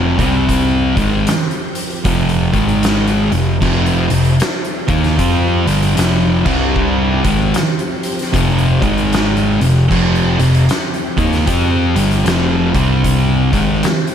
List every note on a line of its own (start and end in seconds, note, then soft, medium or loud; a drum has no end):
0.00 0.15 F1 medium
0.00 0.16 F2 medium
0.00 0.17 C3 loud
0.00 0.19 F3 loud
0.00 0.16 F4 medium
0.00 0.16 C5 medium
0.00 0.16 G5 medium
0.17 0.93 C2 loud
0.17 0.95 C3 loud
0.17 0.95 G3 loud
0.17 2.51 C4 medium
0.17 0.96 C4 loud
0.17 2.51 G4 medium
0.17 0.95 D5 medium
0.17 kick loud
0.17 closed hi-hat medium
0.49 kick loud
0.49 closed hi-hat loud
0.96 1.25 G#1 loud
0.96 1.26 G#2 medium
0.96 1.26 D#3 loud
0.96 2.52 F3 medium
0.96 1.27 G#3 loud
0.96 kick loud
0.96 closed hi-hat medium
1.27 snare loud
1.27 closed hi-hat loud
1.51 closed hi-hat soft
1.75 closed hi-hat medium
1.90 closed hi-hat soft
2.05 2.50 F1 loud
2.05 2.52 F2 medium
2.05 2.52 C3 loud
2.05 2.53 F3 loud
2.05 kick loud
2.05 closed hi-hat loud
2.29 closed hi-hat medium
2.52 3.28 G#1 medium
2.52 3.30 G#2 loud
2.52 3.30 D#3 loud
2.52 3.31 G#3 loud
2.52 3.32 G#3 medium
2.52 3.31 D#4 medium
2.52 3.32 A#4 medium
2.52 kick loud
2.52 closed hi-hat medium
2.69 closed hi-hat soft
2.83 snare loud
2.83 closed hi-hat loud
3.07 closed hi-hat soft
3.31 3.60 F1 medium
3.31 3.56 F2 medium
3.31 3.56 C3 medium
3.31 6.43 F3 medium
3.31 6.43 C4 medium
3.31 6.43 G4 medium
3.31 closed hi-hat medium
3.61 4.07 F1 loud
3.61 4.08 F2 medium
3.61 4.09 C3 loud
3.61 4.09 F3 loud
3.61 kick loud
3.61 crash medium
3.86 closed hi-hat soft
4.09 4.38 F1 medium
4.09 4.34 F2 medium
4.09 4.34 C3 medium
4.09 closed hi-hat medium
4.25 closed hi-hat soft
4.40 snare loud
4.40 closed hi-hat loud
4.65 closed hi-hat soft
4.88 5.17 D#2 medium
4.88 5.18 D#3 loud
4.88 5.18 A#3 medium
4.88 5.19 D#4 loud
4.88 kick loud
4.88 closed hi-hat medium
5.04 snare soft
5.04 closed hi-hat soft
5.18 5.64 F2 loud
5.18 5.66 F3 medium
5.18 5.66 C4 loud
5.18 5.66 F4 loud
5.18 kick loud
5.18 closed hi-hat loud
5.66 5.95 G1 medium
5.66 5.96 G2 medium
5.66 5.96 D3 loud
5.66 5.97 G3 loud
5.66 closed hi-hat medium
5.82 closed hi-hat soft
5.96 6.42 F1 loud
5.96 6.44 F2 medium
5.96 6.44 C3 loud
5.96 6.45 F3 loud
5.96 snare loud
5.96 closed hi-hat loud
6.45 7.20 C2 loud
6.45 7.23 C3 loud
6.45 7.24 C3 medium
6.45 7.23 G3 loud
6.45 7.24 G3 medium
6.45 7.24 C4 loud
6.45 7.24 D4 medium
6.45 kick loud
6.45 crash loud
6.76 kick loud
7.24 7.52 G#1 loud
7.24 7.53 G#2 loud
7.24 7.54 D#3 medium
7.24 8.81 F3 medium
7.24 7.54 G#3 loud
7.24 8.81 C4 medium
7.24 8.81 G4 medium
7.24 kick loud
7.24 closed hi-hat medium
7.54 snare loud
7.54 closed hi-hat loud
7.79 closed hi-hat soft
8.03 closed hi-hat medium
8.19 snare soft
8.19 closed hi-hat soft
8.33 8.79 F1 loud
8.33 8.80 F2 medium
8.33 8.81 C3 loud
8.33 8.81 F3 loud
8.33 kick loud
8.33 closed hi-hat loud
8.58 closed hi-hat soft
8.82 9.56 G#1 medium
8.82 9.59 G#2 loud
8.82 9.59 D#3 loud
8.82 9.59 G#3 loud
8.82 9.60 G#3 medium
8.82 9.60 D#4 medium
8.82 9.60 A#4 medium
8.82 kick loud
8.82 closed hi-hat medium
8.98 closed hi-hat soft
9.13 snare loud
9.13 closed hi-hat loud
9.37 closed hi-hat soft
9.60 9.88 F1 medium
9.60 9.84 F2 medium
9.60 9.84 C3 medium
9.60 12.72 F3 medium
9.60 12.72 C4 medium
9.60 12.72 G4 medium
9.60 closed hi-hat medium
9.90 10.36 F1 loud
9.90 10.37 F2 loud
9.90 10.38 C3 loud
9.90 10.38 F3 loud
9.90 kick loud
9.90 crash loud
10.15 closed hi-hat soft
10.39 10.67 F1 medium
10.39 10.63 F2 medium
10.39 10.63 C3 medium
10.39 closed hi-hat medium
10.54 closed hi-hat soft
10.69 snare loud
10.69 closed hi-hat loud
10.94 closed hi-hat soft
11.17 11.46 D#2 loud
11.17 11.46 D#3 loud
11.17 11.47 A#3 loud
11.17 11.47 D#4 loud
11.17 kick loud
11.17 closed hi-hat medium
11.33 snare soft
11.33 closed hi-hat soft
11.47 11.93 F2 loud
11.47 11.94 F3 medium
11.47 11.95 C4 loud
11.47 11.95 F4 loud
11.47 kick loud
11.47 closed hi-hat loud
11.96 12.24 G1 medium
11.96 12.25 G2 loud
11.96 12.25 D3 loud
11.96 12.26 G3 loud
11.96 closed hi-hat medium
12.11 closed hi-hat soft
12.25 12.71 F1 loud
12.25 12.73 F2 medium
12.25 12.73 C3 medium
12.25 12.73 F3 loud
12.25 snare loud
12.25 closed hi-hat loud
12.74 13.49 C2 loud
12.74 13.51 C3 medium
12.74 13.52 C3 medium
12.74 13.52 G3 loud
12.74 13.52 G3 medium
12.74 13.52 C4 loud
12.74 13.52 D4 medium
12.74 kick loud
12.74 closed hi-hat medium
13.04 kick loud
13.04 closed hi-hat loud
13.52 13.81 G#1 medium
13.52 13.81 G#2 medium
13.52 13.82 D#3 medium
13.52 14.15 F3 medium
13.52 13.82 G#3 medium
13.52 14.15 C4 medium
13.52 14.15 G4 medium
13.52 kick loud
13.52 closed hi-hat medium
13.83 snare loud
13.83 closed hi-hat loud
14.07 closed hi-hat soft